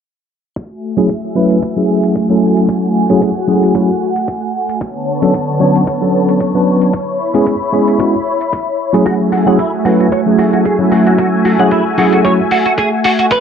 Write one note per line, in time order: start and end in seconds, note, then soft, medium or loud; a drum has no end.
0.56 4.77 A3 medium
0.56 4.77 F#4 medium
0.56 2.67 E5 medium
0.56 4.77 G#5 medium
0.56 kick loud
0.56 closed hi-hat soft
0.97 1.09 F#3 medium
0.97 1.09 A3 medium
0.97 1.09 C#4 medium
0.97 1.09 E4 medium
0.97 1.09 G#4 medium
0.97 closed hi-hat medium
1.09 kick medium
1.09 closed hi-hat soft
1.35 1.57 F#3 medium
1.35 1.57 A3 medium
1.35 1.57 C#4 medium
1.35 1.57 E4 medium
1.35 1.57 B4 medium
1.50 closed hi-hat medium
1.62 kick loud
1.62 closed hi-hat soft
1.77 2.26 F#3 medium
1.77 2.27 A3 medium
1.77 2.27 C#4 medium
1.77 2.27 E4 medium
1.77 2.27 G#4 medium
2.03 closed hi-hat medium
2.15 kick medium
2.15 closed hi-hat soft
2.29 3.06 F#3 medium
2.29 3.06 A3 medium
2.29 3.06 C#4 medium
2.29 3.07 E4 medium
2.29 3.07 A4 medium
2.57 closed hi-hat medium
2.69 4.79 F#5 medium
2.69 kick loud
2.69 closed hi-hat soft
3.09 3.29 F#3 medium
3.09 3.30 A3 medium
3.09 3.30 C#4 medium
3.09 3.30 E4 medium
3.09 3.30 G#4 medium
3.09 closed hi-hat medium
3.22 kick loud
3.22 closed hi-hat soft
3.48 3.72 F#3 medium
3.48 3.72 A3 medium
3.48 3.72 C#4 medium
3.48 3.72 E4 medium
3.48 3.72 G#4 medium
3.63 closed hi-hat medium
3.74 3.89 F#3 medium
3.74 3.89 A3 medium
3.74 3.89 C#4 medium
3.74 3.89 E4 medium
3.74 3.89 F#4 medium
3.74 kick loud
3.74 closed hi-hat soft
4.16 closed hi-hat medium
4.28 kick medium
4.28 closed hi-hat soft
4.69 closed hi-hat medium
4.81 6.92 D3 medium
4.81 6.91 B3 medium
4.81 9.02 C#5 medium
4.81 6.92 A5 medium
4.81 kick loud
4.81 closed hi-hat soft
5.22 5.34 F#3 medium
5.22 5.34 B3 medium
5.22 5.34 C#4 medium
5.22 5.34 D4 medium
5.22 5.34 A4 medium
5.22 closed hi-hat medium
5.34 kick loud
5.34 closed hi-hat soft
5.60 5.81 F#3 medium
5.60 5.81 B3 medium
5.60 5.82 C#4 medium
5.60 5.82 D4 medium
5.60 5.82 C#5 medium
5.75 closed hi-hat medium
5.87 kick loud
5.87 closed hi-hat soft
6.01 6.51 F#3 medium
6.01 6.51 B3 medium
6.01 6.51 C#4 medium
6.01 6.52 D4 medium
6.01 6.52 A4 medium
6.29 closed hi-hat medium
6.40 kick loud
6.40 closed hi-hat soft
6.54 6.92 F#3 medium
6.54 6.92 B3 medium
6.54 6.92 C#4 medium
6.54 6.92 D4 medium
6.54 6.92 B4 medium
6.82 closed hi-hat medium
6.93 9.04 E4 medium
6.93 9.04 B5 medium
6.93 kick loud
6.93 closed hi-hat soft
7.34 7.54 G#3 medium
7.34 7.54 B3 medium
7.34 7.54 C#4 medium
7.34 7.54 E4 medium
7.34 7.55 G#4 medium
7.34 closed hi-hat medium
7.46 kick medium
7.46 closed hi-hat soft
7.72 7.96 G#3 medium
7.72 7.97 B3 medium
7.72 7.97 C#4 medium
7.72 7.97 E4 medium
7.72 7.97 G#4 medium
7.88 closed hi-hat medium
7.99 8.13 G#3 medium
7.99 8.13 B3 medium
7.99 8.14 C#4 medium
7.99 8.14 E4 medium
7.99 8.14 F#4 medium
7.99 kick loud
7.99 closed hi-hat soft
8.41 closed hi-hat medium
8.53 kick loud
8.53 closed hi-hat soft
8.93 9.43 F#3 medium
8.93 9.43 A3 medium
8.93 9.43 C#4 medium
8.93 9.44 E4 medium
8.93 9.44 G#4 medium
8.93 closed hi-hat medium
9.06 13.27 A3 medium
9.06 9.13 F#4 medium
9.06 13.27 F#4 medium
9.06 13.27 E5 medium
9.06 13.27 G#5 medium
9.06 kick loud
9.06 closed hi-hat soft
9.32 9.37 F#4 medium
9.32 open hi-hat loud
9.46 9.58 F#3 medium
9.46 9.58 A3 medium
9.46 9.59 C#4 medium
9.46 9.59 E4 medium
9.46 9.59 G#4 medium
9.46 9.53 F#5 medium
9.46 closed hi-hat medium
9.59 9.70 E4 medium
9.59 kick medium
9.59 closed hi-hat soft
9.85 10.06 F#3 medium
9.85 10.06 A3 medium
9.85 10.06 C#4 medium
9.85 10.07 E4 medium
9.85 9.93 F#4 loud
9.85 10.07 B4 medium
9.85 open hi-hat loud
10.00 10.06 F#4 medium
10.00 closed hi-hat medium
10.12 10.19 C#5 medium
10.12 kick loud
10.12 closed hi-hat soft
10.26 10.76 F#3 medium
10.26 10.76 A3 medium
10.26 10.76 C#4 medium
10.26 10.77 E4 medium
10.26 10.77 G#4 medium
10.39 10.43 F#4 medium
10.39 open hi-hat medium
10.53 10.59 F#4 medium
10.53 closed hi-hat medium
10.65 10.76 G#4 medium
10.65 kick loud
10.65 closed hi-hat soft
10.79 11.56 F#3 medium
10.79 11.56 A3 medium
10.79 11.56 C#4 medium
10.79 11.56 E4 medium
10.92 10.99 F#4 medium
10.92 open hi-hat medium
11.06 11.12 F#4 medium
11.06 closed hi-hat medium
11.18 11.26 F#4 medium
11.18 kick loud
11.18 closed hi-hat soft
11.45 11.49 F#4 medium
11.45 open hi-hat loud
11.59 11.79 F#3 medium
11.59 11.79 A3 medium
11.59 11.79 C#4 medium
11.59 11.79 E4 medium
11.59 11.80 G#4 medium
11.59 11.66 F#5 medium
11.59 closed hi-hat medium
11.71 11.83 E4 medium
11.71 kick medium
11.71 closed hi-hat soft
11.97 12.21 F#3 medium
11.97 12.21 A3 medium
11.97 12.22 C#4 medium
11.97 12.22 E4 medium
11.97 12.06 F#4 loud
11.97 12.22 G#4 medium
11.97 open hi-hat loud
12.13 12.19 F#4 medium
12.13 closed hi-hat medium
12.24 12.38 F#3 medium
12.24 12.39 A3 medium
12.24 12.39 C#4 medium
12.24 12.39 E4 medium
12.24 12.39 F#4 medium
12.24 12.32 C#5 medium
12.24 kick loud
12.24 closed hi-hat soft
12.51 12.56 F#4 medium
12.51 open hi-hat medium
12.66 12.72 F#4 medium
12.66 closed hi-hat medium
12.78 12.89 G#4 medium
12.78 kick medium
12.78 closed hi-hat soft
13.04 13.12 F#4 medium
13.04 open hi-hat medium
13.19 13.25 F#4 medium
13.19 closed hi-hat medium
13.31 13.40 D3 medium
13.31 13.40 B3 medium
13.31 13.38 B4 medium
13.31 13.40 C#5 medium
13.31 13.40 A5 medium
13.31 kick loud
13.31 closed hi-hat soft